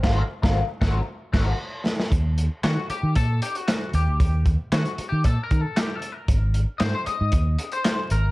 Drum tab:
CC |x---------x-----|----------------|----------------|----------------|
HH |----------------|x-x-x-x-x-xxx-x-|x-x-xxx-x-x-x-x-|x-x-x-x-x-xxx-x-|
CP |----------------|----x-------x---|----x-------x---|----x-------x---|
SD |o--o--o---o---oo|----o-------o---|----o-------o---|----o-------o---|
BD |o--o--o---o-----|o-------o-------|o-o-----o-o-----|o-------o-------|